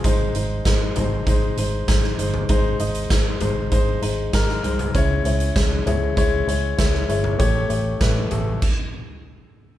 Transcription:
<<
  \new Staff \with { instrumentName = "Grand piano" } { \time 4/4 \key des \lydian \tempo 4 = 98 <aes ees' c''>8 <aes ees' c''>8 <aes ees' c''>8 <aes ees' c''>8 <aes ees' c''>8 <aes ees' c''>8 <aes ees' c''>8 <aes ees' c''>8 | <aes ees' c''>8 <aes ees' ees''>8 <aes ees' c''>8 <aes ees' c''>8 <aes ees' c''>8 <aes ees' c''>8 <aes ees' bes'>8 <aes ees' c''>8 | <aes fes' des''>8 <aes fes' des''>8 <aes fes' des''>8 <aes fes' des''>8 <aes fes' des''>8 <aes fes' des''>8 <aes fes' des''>8 <aes fes' des''>8 | <a g' cis''>8 <a g' cis''>8 <a g' ces''>8 <a g' a'>8 r2 | }
  \new Staff \with { instrumentName = "Grand piano" } { \clef bass \time 4/4 \key des \lydian aes,4. r2 r8 | aes,4. r2 r8 | des4. r2 r8 | a,4. r2 r8 | }
  \new Staff \with { instrumentName = "Fingered electric bass" } { \clef bass \time 4/4 \key des \lydian aes,,8 aes,,8 aes,,8 aes,,8 aes,,8 aes,,8 aes,,8 g,,8 | aes,,8 aes,,8 aes,,8 aes,,8 aes,,8 aes,,8 aes,,8 c,8 | des,8 des,8 des,8 des,8 des,8 des,8 des,8 g,,8 | a,,8 a,,8 a,,8 a,,8 r2 | }
  \new DrumStaff \with { instrumentName = "Drums" } \drummode { \time 4/4 <hh bd>8 hh8 <hh bd sn>8 <hh tomfh>8 <hh bd>8 hh8 <hh bd sn>16 sn16 hh16 tomfh16 | <hh bd>8 hh16 hh16 <hh bd sn>8 <hh tomfh>8 <hh bd>8 hh8 <hh bd sn>16 sn16 hh16 <hh tomfh>16 | <hh bd>8 hh16 hh16 <hh bd sn>8 <hh tomfh>8 <hh bd>8 hh8 <hh bd sn>16 sn16 hh16 tomfh16 | <hh bd>8 hh8 <hh bd sn>8 <hh tomfh>8 <cymc bd>4 r4 | }
>>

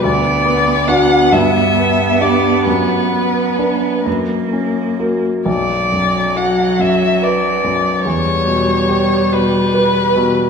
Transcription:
<<
  \new Staff \with { instrumentName = "Violin" } { \time 6/8 \key b \minor \tempo 4. = 46 d''4 fis''8 e''4 d''8 | b'4. r4. | d''4 fis''8 e''8 d''4 | cis''4. b'4. | }
  \new Staff \with { instrumentName = "Grand piano" } { \time 6/8 \key b \minor d,8 b8 <d' fis'>8 g,8 b8 <d' g'>8 | fis,8 b8 <d' b'>8 fis,8 cis'8 <fis' ais'>8 | b,,8 fis,8 fis'8 fis,8 b'8 fis,8 | e,8 b,8 g'8 b,8 b'8 b,8 | }
  \new Staff \with { instrumentName = "Cello" } { \clef bass \time 6/8 \key b \minor b2.~ | b4. ais4~ ais16 r16 | fis2. | g2. | }
>>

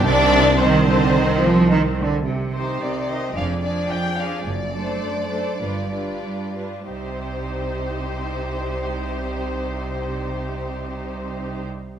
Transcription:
<<
  \new Staff \with { instrumentName = "Violin section" } { \time 4/4 \key c \minor \tempo 4 = 99 d''4 c''2~ c''8 r8 | r8 c''8 d''8 ees''8 f''8 d''8 g''8 f''8 | d''2.~ d''8 r8 | c''1~ |
c''1 | }
  \new Staff \with { instrumentName = "Violin section" } { \time 4/4 \key c \minor d'4 c'2~ c'8 r8 | r8 <g' c''>4 <g' c''>8 <aes' d''>8 <aes' d''>4 <aes' d''>8 | r8 <a' c''>4 <a' c''>8 <f' b'>8 <f' b'>4 <f' b'>8 | <g' c''>1~ |
<g' c''>1 | }
  \new Staff \with { instrumentName = "Viola section" } { \time 4/4 \key c \minor <ees c'>4 <ees c'>2~ <ees c'>8 r8 | r8 <ees ees'>4 <ees ees'>8 <f d'>8 <f d'>4 <f d'>8 | r8 <a d'>4 <a d'>8 <g d'>8 <g d'>4 <g d'>8 | <g ees'>1~ |
<g ees'>1 | }
  \new Staff \with { instrumentName = "Cello section" } { \clef bass \time 4/4 \key c \minor c4 ees8 d8 ees8 f8 ees8 d8 | c4 c4 f,4 f,4 | fis,4 fis,4 g,4 g,4 | c1~ |
c1 | }
  \new Staff \with { instrumentName = "Double bass section" } { \clef bass \time 4/4 \key c \minor c,2.~ c,8 r8 | c,4 r4 f,,4 r4 | fis,,4 r4 g,,4 r4 | c,1~ |
c,1 | }
>>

